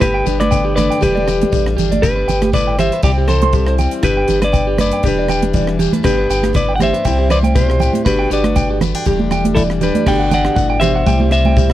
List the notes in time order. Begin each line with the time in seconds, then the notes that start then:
0.00 G1 G2 B3 D4 G4 B4, kick, cross-stick, closed hi-hat, shekere
0.14 G5
0.26 G1 D4 G4, closed hi-hat, low conga, shekere
0.40 B4 D5, cross-stick, closed hi-hat, high conga
0.51 D3 B3 G5, kick, closed hi-hat, shekere
0.65 G4
0.76 D4 B4 D5, cross-stick, closed hi-hat, high conga, low conga, shekere
0.90 G5, closed hi-hat
1.01 E1 E2 G3 D4 G4 B4, kick, closed hi-hat, shekere
1.15 D5, high conga
1.27 D4 G5, cross-stick, closed hi-hat, low conga, shekere
1.41 closed hi-hat, high conga
1.52 A1 G3 D5, muted steel-string acoustic guitar stroke, kick, closed hi-hat, shekere
1.66 cross-stick
1.77 G1 D4 G4, closed hi-hat, low conga, shekere
1.92 D5, closed hi-hat, high conga
2.02 G1 G2 B3 D4 G4 B4, muted clean electric guitar stroke, kick, cross-stick, closed hi-hat, shekere
2.16 B4
2.28 G1 G5, muted steel-string acoustic guitar stroke, closed hi-hat, low conga, shekere
2.42 G4, cross-stick, closed hi-hat, high conga
2.53 A2 B4 D5, kick, closed hi-hat, shekere
2.67 G5
2.79 B2 G4 C5 E5, cross-stick, closed hi-hat, low conga, shekere
2.92 B4, closed hi-hat
3.03 C2 C3 G3 C4 E4 G4 D5 G5, kick, closed hi-hat, shekere
3.18 G4
3.28 C4 A4 C5, cross-stick, closed hi-hat, low conga, shekere
3.42 C6, closed hi-hat, high conga
3.53 E3 G3 G4, kick, closed hi-hat, shekere
3.67 C5, cross-stick
3.78 C4 G5, closed hi-hat, low conga, shekere
3.91 closed hi-hat
4.03 G1 G2 B3 D4 G4 B4, kick, cross-stick, closed hi-hat, shekere
4.17 G5
4.28 G1 D4 G4, closed hi-hat, low conga, shekere
4.42 B4 D5, cross-stick, closed hi-hat, high conga
4.52 G2 G5, kick, closed hi-hat, shekere
4.67 G4
4.78 F#2 B4 D5, cross-stick, closed hi-hat, high conga, low conga, shekere
4.91 G5, closed hi-hat
5.03 E1 E2 G3 D4 G4, kick, closed hi-hat, shekere
5.08 B4
5.19 D5
5.29 D4 G5, cross-stick, closed hi-hat, low conga, shekere
5.42 closed hi-hat, high conga
5.54 E3 G3 D5, kick, closed hi-hat, shekere
5.67 cross-stick
5.79 D4 G4, closed hi-hat, low conga, shekere
5.93 B4, closed hi-hat, high conga
6.03 G1 G2 B3 D4 G4 B4, kick, cross-stick, closed hi-hat, shekere
6.18 B4
6.29 G1 D4 G5, closed hi-hat, shekere
6.43 G4, cross-stick, closed hi-hat, high conga
6.53 A2 B4 D5, kick, closed hi-hat, shekere
6.69 G5
6.76 B2 F#5
6.80 G4 C5 E5, cross-stick, closed hi-hat, high conga, low conga, shekere
6.94 B4, closed hi-hat
7.05 C2 C3 G3 C4 E4 G5, kick, closed hi-hat, shekere
7.19 G4
7.30 C4 B4 C5 D5, cross-stick, closed hi-hat, low conga, shekere
7.43 G5, closed hi-hat, high conga
7.55 B2 G4 C5, kick, closed hi-hat, shekere
7.69 C5, cross-stick
7.80 A2 G5, closed hi-hat, low conga, shekere
7.93 closed hi-hat, high conga
8.05 G1 G2 B3 D4 F#4 G4 B4, kick, cross-stick, closed hi-hat, shekere
8.19 G5
8.30 G1 D4 G4 B4 D5, closed hi-hat, shekere
8.44 cross-stick, closed hi-hat, high conga
8.56 D3 B3 G5, kick, closed hi-hat, shekere
8.70 G4
8.81 B3 B4, cross-stick, closed hi-hat, high conga, low conga, shekere
8.95 D4 G5, closed hi-hat
9.06 E1 E2 G3 D4 G4, kick, closed hi-hat, shekere
9.19 high conga
9.31 D4 G5, cross-stick, closed hi-hat, low conga, shekere
9.45 closed hi-hat, high conga
9.55 E3 G3 E4 A4 D5, kick, closed hi-hat, shekere
9.70 cross-stick
9.81 D4 G4 B4, closed hi-hat, low conga, shekere
9.95 D5, closed hi-hat, high conga
10.06 G1 G2 D3 B3 D4 F#4 G4 D5 G5, kick, cross-stick, crash, shekere
10.20 F#5
10.31 F#4 D5 F#5 G5, closed hi-hat, high conga, low conga, shekere
10.45 G4, cross-stick
10.56 G1 A2 F#5, kick, shekere
10.70 G5
10.80 B2 G4 C5 E5, cross-stick, closed hi-hat, low conga, shekere
10.96 F#5
11.06 C2 C3 E3 G3 C4 E4 G5, kick, high conga, shekere
11.20 G4, high conga
11.31 E4 C5 E5, cross-stick, closed hi-hat, shekere
11.45 G5, high conga
11.56 B2 G4, kick, shekere
11.70 cross-stick